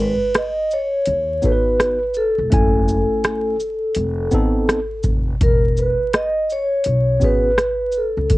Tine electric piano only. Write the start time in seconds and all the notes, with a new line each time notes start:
1.42 B3 D#4 F#4 A4
1.52 B4
2.50 A3 C#4 E4 G#5
4.31 B3 C4 D#4 A4
7.20 B3 C#4 F#4 G#4